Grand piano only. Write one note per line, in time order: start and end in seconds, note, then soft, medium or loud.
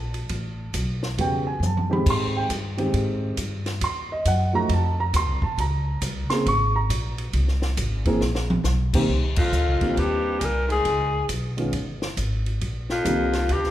0.00 0.71 A5 medium
1.18 1.44 C#3 medium
1.18 1.44 G3 medium
1.18 1.44 B3 medium
1.18 1.44 F#4 medium
1.18 1.47 G5 medium
1.47 1.62 G#5 medium
1.66 1.91 A5 medium
1.90 2.47 D#3 medium
1.90 2.46 G#3 medium
1.90 2.47 C4 medium
1.90 2.47 G4 medium
1.90 2.07 B5 medium
2.10 2.36 C6 medium
2.37 2.45 G5 medium
2.77 3.34 D#3 medium
2.77 3.34 G#3 medium
2.77 3.34 C4 medium
2.77 3.35 G4 medium
3.84 4.10 C6 medium
4.12 4.26 D#5 medium
4.28 4.54 F#5 medium
4.53 4.67 F3 medium
4.53 4.68 A3 medium
4.53 4.68 D#4 medium
4.53 4.68 F#4 medium
4.53 4.70 A#5 loud
4.73 4.99 A5 medium
5.00 5.14 A#5 loud
5.16 5.43 C6 loud
5.43 5.58 A5 medium
5.60 6.27 A#5 medium
6.30 6.44 C#3 medium
6.30 6.44 A#3 medium
6.30 6.44 C4 medium
6.30 6.45 G#4 medium
6.30 6.45 C6 medium
6.48 6.74 C#6 loud
6.76 6.84 A#5 loud
8.06 8.20 E3 medium
8.06 8.20 A#3 medium
8.06 8.20 C4 medium
8.06 8.20 G#4 medium
8.94 9.08 D#3 medium
8.94 9.08 A#3 medium
8.94 9.08 C4 medium
8.94 9.08 G4 medium
9.81 10.38 D#3 medium
9.81 10.38 G3 medium
9.81 10.38 A#3 medium
9.81 10.38 C4 medium
9.81 10.38 G4 medium
11.57 11.71 D#3 medium
11.57 11.72 G#3 medium
11.57 11.71 B3 medium
11.57 11.72 C#4 medium
11.57 11.72 F4 medium
13.04 13.30 D#3 medium
13.04 13.31 G3 medium
13.04 13.31 A#3 medium
13.04 13.31 C4 medium
13.04 13.31 G4 medium